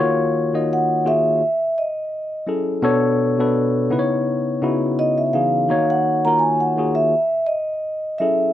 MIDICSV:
0, 0, Header, 1, 3, 480
1, 0, Start_track
1, 0, Tempo, 714286
1, 1907, Time_signature, 4, 2, 24, 8
1, 5732, End_track
2, 0, Start_track
2, 0, Title_t, "Vibraphone"
2, 0, Program_c, 0, 11
2, 490, Note_on_c, 0, 78, 91
2, 722, Note_on_c, 0, 76, 101
2, 726, Note_off_c, 0, 78, 0
2, 1196, Note_on_c, 0, 75, 72
2, 1209, Note_off_c, 0, 76, 0
2, 1645, Note_off_c, 0, 75, 0
2, 3353, Note_on_c, 0, 75, 107
2, 3479, Note_on_c, 0, 76, 78
2, 3492, Note_off_c, 0, 75, 0
2, 3577, Note_off_c, 0, 76, 0
2, 3584, Note_on_c, 0, 77, 86
2, 3966, Note_on_c, 0, 78, 94
2, 3975, Note_off_c, 0, 77, 0
2, 4198, Note_on_c, 0, 82, 95
2, 4213, Note_off_c, 0, 78, 0
2, 4296, Note_on_c, 0, 80, 93
2, 4307, Note_off_c, 0, 82, 0
2, 4437, Note_on_c, 0, 78, 81
2, 4444, Note_off_c, 0, 80, 0
2, 4664, Note_off_c, 0, 78, 0
2, 4670, Note_on_c, 0, 76, 96
2, 5016, Note_on_c, 0, 75, 84
2, 5030, Note_off_c, 0, 76, 0
2, 5499, Note_on_c, 0, 76, 84
2, 5516, Note_off_c, 0, 75, 0
2, 5732, Note_off_c, 0, 76, 0
2, 5732, End_track
3, 0, Start_track
3, 0, Title_t, "Tine electric piano"
3, 0, Program_c, 1, 4
3, 0, Note_on_c, 1, 51, 99
3, 0, Note_on_c, 1, 58, 91
3, 0, Note_on_c, 1, 65, 95
3, 0, Note_on_c, 1, 66, 98
3, 0, Note_on_c, 1, 73, 112
3, 106, Control_c, 1, 64, 127
3, 330, Note_off_c, 1, 51, 0
3, 333, Note_off_c, 1, 58, 0
3, 335, Note_off_c, 1, 65, 0
3, 336, Note_off_c, 1, 66, 0
3, 336, Note_off_c, 1, 73, 0
3, 357, Note_on_c, 1, 51, 63
3, 364, Note_on_c, 1, 58, 59
3, 366, Note_on_c, 1, 63, 60
3, 368, Note_on_c, 1, 66, 62
3, 370, Note_on_c, 1, 75, 73
3, 679, Note_off_c, 1, 51, 0
3, 682, Note_off_c, 1, 58, 0
3, 683, Note_off_c, 1, 63, 0
3, 684, Note_off_c, 1, 66, 0
3, 686, Note_off_c, 1, 75, 0
3, 701, Note_on_c, 1, 51, 63
3, 706, Note_on_c, 1, 58, 58
3, 712, Note_on_c, 1, 65, 61
3, 712, Note_on_c, 1, 66, 58
3, 714, Note_on_c, 1, 68, 68
3, 944, Note_off_c, 1, 51, 0
3, 947, Note_off_c, 1, 58, 0
3, 949, Note_off_c, 1, 65, 0
3, 950, Note_off_c, 1, 66, 0
3, 950, Note_off_c, 1, 68, 0
3, 955, Control_c, 1, 64, 0
3, 1067, Control_c, 1, 64, 127
3, 1657, Note_on_c, 1, 54, 62
3, 1661, Note_on_c, 1, 61, 55
3, 1664, Note_on_c, 1, 64, 57
3, 1671, Note_on_c, 1, 68, 59
3, 1672, Note_on_c, 1, 69, 71
3, 1886, Note_off_c, 1, 54, 0
3, 1888, Note_off_c, 1, 61, 0
3, 1889, Note_off_c, 1, 64, 0
3, 1893, Note_off_c, 1, 68, 0
3, 1893, Note_off_c, 1, 69, 0
3, 1897, Note_on_c, 1, 47, 107
3, 1898, Note_on_c, 1, 59, 101
3, 1905, Note_on_c, 1, 62, 95
3, 1907, Note_on_c, 1, 69, 107
3, 1913, Note_on_c, 1, 73, 118
3, 1915, Control_c, 1, 64, 0
3, 2017, Control_c, 1, 64, 127
3, 2248, Note_off_c, 1, 47, 0
3, 2248, Note_off_c, 1, 59, 0
3, 2252, Note_off_c, 1, 62, 0
3, 2253, Note_off_c, 1, 69, 0
3, 2256, Note_off_c, 1, 73, 0
3, 2273, Note_on_c, 1, 47, 79
3, 2282, Note_on_c, 1, 59, 63
3, 2285, Note_on_c, 1, 62, 71
3, 2287, Note_on_c, 1, 69, 70
3, 2289, Note_on_c, 1, 71, 86
3, 2597, Note_off_c, 1, 47, 0
3, 2601, Note_off_c, 1, 59, 0
3, 2603, Note_off_c, 1, 62, 0
3, 2604, Note_off_c, 1, 69, 0
3, 2605, Note_off_c, 1, 71, 0
3, 2624, Note_on_c, 1, 49, 78
3, 2625, Note_on_c, 1, 59, 75
3, 2628, Note_on_c, 1, 63, 74
3, 2633, Note_on_c, 1, 64, 74
3, 2636, Control_c, 1, 64, 0
3, 2637, Note_on_c, 1, 71, 70
3, 2681, Note_on_c, 1, 73, 92
3, 2682, Note_off_c, 1, 71, 0
3, 2739, Control_c, 1, 64, 127
3, 3074, Note_off_c, 1, 49, 0
3, 3074, Note_off_c, 1, 59, 0
3, 3076, Note_off_c, 1, 63, 0
3, 3078, Note_off_c, 1, 64, 0
3, 3102, Note_off_c, 1, 73, 0
3, 3102, Note_on_c, 1, 49, 83
3, 3106, Note_on_c, 1, 59, 78
3, 3110, Note_on_c, 1, 63, 72
3, 3114, Note_on_c, 1, 64, 78
3, 3115, Note_on_c, 1, 66, 86
3, 3553, Note_off_c, 1, 49, 0
3, 3555, Note_off_c, 1, 59, 0
3, 3557, Note_off_c, 1, 63, 0
3, 3558, Note_off_c, 1, 64, 0
3, 3559, Note_off_c, 1, 66, 0
3, 3582, Note_on_c, 1, 49, 58
3, 3587, Note_on_c, 1, 59, 58
3, 3592, Note_on_c, 1, 63, 59
3, 3595, Note_on_c, 1, 68, 66
3, 3597, Note_on_c, 1, 52, 57
3, 3809, Note_off_c, 1, 49, 0
3, 3811, Note_off_c, 1, 59, 0
3, 3814, Note_off_c, 1, 63, 0
3, 3815, Note_off_c, 1, 68, 0
3, 3816, Note_off_c, 1, 52, 0
3, 3821, Note_on_c, 1, 51, 91
3, 3824, Note_on_c, 1, 58, 74
3, 3830, Note_on_c, 1, 63, 84
3, 3831, Note_on_c, 1, 66, 83
3, 3836, Control_c, 1, 64, 0
3, 3838, Note_on_c, 1, 73, 103
3, 3954, Control_c, 1, 64, 127
3, 4170, Note_off_c, 1, 51, 0
3, 4172, Note_off_c, 1, 58, 0
3, 4174, Note_off_c, 1, 63, 0
3, 4175, Note_off_c, 1, 66, 0
3, 4178, Note_off_c, 1, 73, 0
3, 4203, Note_on_c, 1, 51, 67
3, 4204, Note_on_c, 1, 58, 63
3, 4211, Note_on_c, 1, 65, 59
3, 4214, Note_on_c, 1, 66, 64
3, 4217, Note_on_c, 1, 70, 76
3, 4522, Note_off_c, 1, 51, 0
3, 4523, Note_off_c, 1, 58, 0
3, 4526, Note_off_c, 1, 65, 0
3, 4528, Note_off_c, 1, 66, 0
3, 4529, Note_off_c, 1, 70, 0
3, 4548, Note_on_c, 1, 51, 65
3, 4552, Note_on_c, 1, 58, 62
3, 4555, Note_on_c, 1, 65, 54
3, 4559, Note_on_c, 1, 66, 67
3, 4563, Note_on_c, 1, 68, 74
3, 4788, Note_off_c, 1, 51, 0
3, 4790, Note_off_c, 1, 58, 0
3, 4791, Note_off_c, 1, 65, 0
3, 4793, Note_off_c, 1, 66, 0
3, 4795, Note_off_c, 1, 68, 0
3, 4797, Control_c, 1, 64, 0
3, 4909, Control_c, 1, 64, 127
3, 5510, Note_on_c, 1, 54, 61
3, 5514, Note_on_c, 1, 61, 63
3, 5515, Note_on_c, 1, 64, 63
3, 5520, Note_on_c, 1, 68, 64
3, 5522, Note_on_c, 1, 69, 65
3, 5732, Note_off_c, 1, 54, 0
3, 5732, Note_off_c, 1, 61, 0
3, 5732, Note_off_c, 1, 64, 0
3, 5732, Note_off_c, 1, 68, 0
3, 5732, Note_off_c, 1, 69, 0
3, 5732, End_track
0, 0, End_of_file